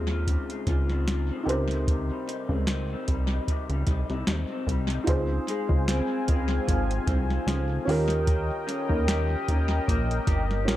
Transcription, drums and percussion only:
0.27 kick, closed hi-hat
0.50 closed hi-hat
0.67 kick, closed hi-hat
0.90 snare
1.08 snare, closed hi-hat
1.49 closed hi-hat
1.71 closed hi-hat
1.87 kick, closed hi-hat
2.29 closed hi-hat
2.49 kick
2.67 snare, closed hi-hat
3.08 kick, closed hi-hat
3.48 kick, closed hi-hat
3.70 closed hi-hat
3.87 kick, closed hi-hat
4.10 snare
4.27 snare, closed hi-hat
4.67 kick, closed hi-hat
4.90 closed hi-hat
5.07 kick, closed hi-hat
5.48 closed hi-hat
5.69 kick
5.88 snare, closed hi-hat
6.28 kick, closed hi-hat
6.68 kick, closed hi-hat
6.91 closed hi-hat
7.07 kick, closed hi-hat
7.30 snare
7.48 snare, closed hi-hat
7.89 open hi-hat
8.10 closed hi-hat
8.27 kick, closed hi-hat
8.69 closed hi-hat
8.90 kick
9.08 snare, closed hi-hat
9.48 kick, closed hi-hat
9.88 kick, closed hi-hat
10.11 closed hi-hat
10.27 kick, closed hi-hat
10.51 snare
10.68 snare, closed hi-hat

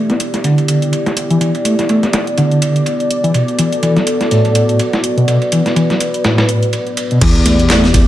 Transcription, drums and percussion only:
0.10 snare, closed hi-hat
0.20 closed hi-hat, ride
0.34 snare, closed hi-hat
0.44 closed hi-hat, open hi-hat
0.58 closed hi-hat, ride
0.68 closed hi-hat, ride
0.82 closed hi-hat
0.93 closed hi-hat, ride
1.06 snare, closed hi-hat
1.17 closed hi-hat, ride
1.30 closed hi-hat
1.41 closed hi-hat, ride
1.55 closed hi-hat, ride
1.65 closed hi-hat, ride
1.79 snare, closed hi-hat
1.89 closed hi-hat, ride
2.03 snare, closed hi-hat
2.13 snare, closed hi-hat, ride
2.27 closed hi-hat
2.38 closed hi-hat, ride
2.51 closed hi-hat
2.62 closed hi-hat, ride
2.76 closed hi-hat
2.86 closed hi-hat, ride
3.00 closed hi-hat
3.11 closed hi-hat
3.24 closed hi-hat
3.34 closed hi-hat, ride
3.48 closed hi-hat
3.59 closed hi-hat, ride
3.72 closed hi-hat
3.83 closed hi-hat, ride
3.96 snare, closed hi-hat
4.07 closed hi-hat, ride
4.21 snare, closed hi-hat
4.31 closed hi-hat, open hi-hat
4.45 closed hi-hat, ride
4.55 closed hi-hat, ride
4.69 closed hi-hat
4.79 closed hi-hat, ride
4.93 snare, closed hi-hat
5.04 closed hi-hat
5.18 closed hi-hat
5.28 closed hi-hat, ride
5.42 closed hi-hat, ride
5.52 closed hi-hat, ride
5.66 snare, closed hi-hat
5.76 closed hi-hat, ride
5.90 snare, closed hi-hat
6.00 closed hi-hat, ride
6.14 closed hi-hat
6.24 snare, closed hi-hat, ride
6.38 snare, closed hi-hat, ride
6.49 closed hi-hat
6.63 closed hi-hat
6.73 closed hi-hat, ride
6.87 closed hi-hat
6.97 closed hi-hat, ride
7.11 closed hi-hat
7.21 kick, closed hi-hat, crash, ride
7.35 closed hi-hat
7.46 closed hi-hat, ride
7.59 closed hi-hat
7.70 snare, clap, closed hi-hat, ride
7.84 snare, closed hi-hat
7.94 kick, closed hi-hat, ride

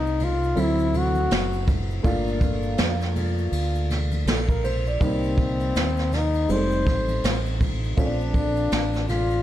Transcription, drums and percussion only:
0.06 shaker
0.20 ride, low conga, shaker
0.43 shaker
0.56 ride, shaker
0.79 shaker
0.94 ride, low conga, shaker
1.15 high conga, shaker
1.31 snare, hi-hat pedal, ride, high conga, shaker
1.53 shaker
1.68 kick, ride, low conga, shaker
1.90 shaker
2.04 kick, ride, shaker
2.27 shaker
2.41 kick, ride, high conga, shaker
2.63 shaker
2.78 snare, hi-hat pedal, ride, shaker
3.01 snare, shaker
3.16 ride, low conga, shaker
3.38 shaker
3.52 ride, shaker
3.75 shaker
3.90 snare, ride, low conga, shaker
4.11 ride, high conga, shaker
4.27 snare, hi-hat pedal, ride, high conga, shaker
4.49 kick, shaker
4.64 ride, low conga, shaker
4.86 shaker
5.01 kick, ride, shaker
5.24 shaker
5.38 kick, ride, high conga, shaker
5.60 ride, shaker
5.75 snare, hi-hat pedal, ride, shaker
5.97 snare, shaker
6.12 snare, ride, low conga, shaker
6.34 ride, shaker
6.49 ride, shaker
6.71 shaker
6.86 kick, snare, ride, low conga, shaker
7.08 ride, high conga, shaker
7.24 snare, hi-hat pedal, ride, high conga, shaker
7.46 shaker
7.61 kick, ride, low conga, shaker
7.84 shaker
7.98 kick, ride, shaker
8.21 shaker
8.34 kick, ride, high conga, shaker
8.56 ride, shaker
8.72 snare, hi-hat pedal, ride, shaker
8.93 snare, shaker
9.08 snare, ride, low conga, shaker
9.30 ride, shaker

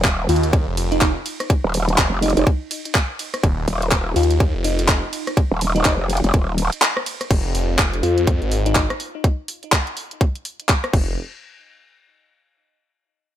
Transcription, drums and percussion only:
0.04 kick, clap, closed hi-hat
0.29 open hi-hat, ride
0.36 closed hi-hat
0.43 closed hi-hat
0.53 kick, closed hi-hat, ride
0.77 open hi-hat, ride
0.92 closed hi-hat
1.01 kick, clap, closed hi-hat, ride
1.26 open hi-hat, ride
1.40 cross-stick, closed hi-hat
1.50 kick, closed hi-hat, ride
1.74 open hi-hat, ride
1.89 closed hi-hat
1.98 kick, clap, closed hi-hat, ride
2.22 open hi-hat, ride
2.30 closed hi-hat
2.37 closed hi-hat
2.47 kick, closed hi-hat, ride
2.71 open hi-hat, ride
2.85 closed hi-hat
2.95 kick, clap, closed hi-hat, ride
3.19 open hi-hat, ride
3.34 cross-stick, closed hi-hat
3.43 kick, closed hi-hat, ride
3.68 open hi-hat, ride
3.82 closed hi-hat
3.92 kick, clap, closed hi-hat, ride
4.16 open hi-hat, ride
4.23 closed hi-hat
4.31 closed hi-hat
4.40 kick, closed hi-hat, ride
4.64 open hi-hat, ride
4.79 closed hi-hat
4.88 kick, clap, closed hi-hat, ride
5.13 open hi-hat, ride
5.27 cross-stick, closed hi-hat
5.37 kick, closed hi-hat, ride
5.61 open hi-hat, ride
5.76 closed hi-hat
5.85 kick, clap, closed hi-hat, ride
6.10 open hi-hat, ride
6.17 closed hi-hat
6.24 closed hi-hat
6.34 kick, closed hi-hat, ride
6.58 open hi-hat, ride
6.72 closed hi-hat
6.82 clap, closed hi-hat, ride
6.97 cross-stick
7.06 open hi-hat, ride
7.21 cross-stick, closed hi-hat
7.31 kick, closed hi-hat, crash
7.55 open hi-hat
7.79 kick, clap, closed hi-hat
7.93 closed hi-hat
8.03 open hi-hat
8.18 closed hi-hat
8.27 kick, closed hi-hat
8.42 closed hi-hat
8.52 open hi-hat
8.66 closed hi-hat
8.75 kick, clap, closed hi-hat
8.90 cross-stick, closed hi-hat
9.00 open hi-hat
9.24 kick, closed hi-hat
9.48 open hi-hat
9.63 closed hi-hat
9.72 kick, clap, closed hi-hat
9.87 closed hi-hat
9.97 open hi-hat
10.11 closed hi-hat
10.21 kick, closed hi-hat
10.35 closed hi-hat
10.45 open hi-hat
10.60 closed hi-hat
10.69 kick, clap, closed hi-hat
10.84 cross-stick, closed hi-hat
10.93 kick, crash

